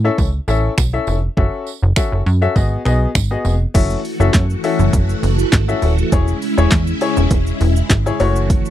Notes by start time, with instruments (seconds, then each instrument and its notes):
Already playing: analog synth bass A2
0.04 grand piano C#4 E4 A4 E5
0.18 analog synth bass C#2, kick, tambourine
0.48 analog synth bass A1, grand piano C#4 E4 A4 E5, tambourine
0.78 analog synth bass B1, finger snap, kick, tambourine
0.93 grand piano C#4 E4 A4 E5
1.07 analog synth bass F1, tambourine
1.37 analog synth bass F#1, grand piano C#4 F#4 A4 E5, kick
1.67 tambourine
1.83 analog synth bass F#1
1.96 grand piano C#4 F#4 A4 E5, finger snap, kick, tambourine
2.12 analog synth bass F#1
2.26 analog synth bass F#2, tambourine
2.42 grand piano C#4 F#4 A4 E5
2.56 analog synth bass G#1, grand piano B3 F#4 G#4 D#5, kick, tambourine
2.85 analog synth bass B1, grand piano B3 F#4 G#4 D#5, finger snap, tambourine
3.15 analog synth bass G#1, finger snap, kick, tambourine
3.31 grand piano B3 F#4 G#4 D#5
3.45 analog synth bass F1, tambourine
3.74 analog synth bass F#1, string machine E3 A3 F#4, grand piano C#4 E4 F#4 A4 E5, kick, closed hi-hat, crash, shaker
3.90 shaker
4.05 open hi-hat, shaker
4.20 analog synth bass F#1, grand piano C#4 E4 F#4 A4 E5, shaker
4.33 analog synth bass F#2, kick, snare, clap, closed hi-hat, shaker
4.50 shaker
4.64 grand piano C#4 E4 F#4 A4 E5, open hi-hat, shaker
4.79 analog synth bass F#1, shaker
4.93 analog synth bass F#1, kick, closed hi-hat, shaker
5.09 shaker
5.23 analog synth bass F#1, open hi-hat, shaker
5.39 shaker
5.52 analog synth bass G#1, kick, snare, clap, closed hi-hat, shaker
5.68 grand piano C#4 E4 F#4 A4 E5, shaker
5.82 analog synth bass D#1, open hi-hat, shaker
5.98 shaker
6.12 analog synth bass E1, string machine C#3 G#3 E4, grand piano E4 G#4 C#5, kick, closed hi-hat, shaker
6.28 shaker
6.42 open hi-hat, shaker
6.57 analog synth bass E1, grand piano E4 G#4 C#5, shaker
6.70 analog synth bass E2, kick, snare, clap, closed hi-hat, shaker
6.87 shaker
7.01 grand piano E4 G#4 C#5, open hi-hat, shaker
7.17 analog synth bass E1, shaker
7.31 analog synth bass E1, kick, closed hi-hat, shaker
7.47 shaker
7.61 analog synth bass E1, open hi-hat, shaker
7.76 shaker
7.89 analog synth bass G#1, kick, snare, clap, closed hi-hat, shaker
8.06 grand piano E4 G#4 C#5, shaker
8.20 analog synth bass F#1, string machine E3 A3 F#4, grand piano A3 C#4 E4 F#4 C#5, open hi-hat, shaker
8.36 shaker
8.50 kick, closed hi-hat, shaker
8.66 shaker